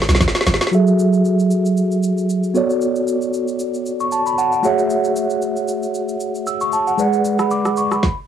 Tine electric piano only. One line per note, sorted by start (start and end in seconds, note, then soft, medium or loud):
0.71 2.51 F#3 medium
0.71 2.51 F#4 medium
0.71 2.52 G#4 medium
0.71 2.52 A4 medium
0.71 2.53 E5 medium
2.54 4.59 B3 medium
2.54 4.60 F#4 medium
2.54 4.60 A4 medium
2.54 4.61 C#5 medium
2.54 4.61 D5 medium
4.00 4.25 C#6 medium
4.12 4.36 A5 medium
4.26 4.37 B5 medium
4.38 4.51 F#5 medium
4.38 4.52 A5 medium
4.52 4.63 F#5 medium
4.63 6.68 A3 medium
4.63 6.68 F#4 medium
4.63 6.69 G#4 medium
4.63 6.69 C#5 medium
4.63 6.70 E5 medium
4.63 4.88 F#5 medium
6.47 6.60 E6 medium
6.61 6.72 C#6 medium
6.73 6.86 A5 medium
6.87 7.00 F#5 medium
6.97 8.00 G#3 medium
6.97 8.01 G#4 medium
6.97 8.01 B4 medium
6.97 8.02 D5 medium
6.97 8.02 F#5 medium
7.40 7.51 B5 medium
7.51 7.76 D6 medium
7.77 7.91 C#6 medium
7.92 8.16 B5 medium